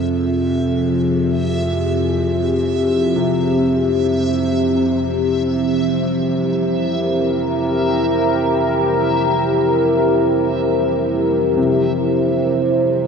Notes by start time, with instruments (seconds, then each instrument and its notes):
Already playing: synth drone F2 C3, ambient pad E4 G4 G#4, synth texture E5
3.16 grand piano C3
5.38 ambient pad A#4
11.57 grand piano C3, synth drone C3